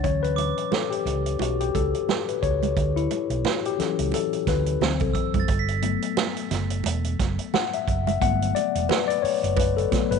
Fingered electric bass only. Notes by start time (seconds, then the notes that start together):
0.04 D2
1.05 C#2
1.39 B1
1.75 C#2
2.43 C#2
2.77 D2
3.30 B1
3.79 muted fingered electric bass stroke
3.99 C#2
4.47 D2
4.81 D2
5.01 C2
5.34 F#1
5.49 G1
6.51 F#1
6.85 E1
7.19 F#1
7.88 F#1
8.21 G1
8.75 E1
9.24 muted fingered electric bass stroke
9.43 F#1
9.92 muted fingered electric bass stroke
10.11 G1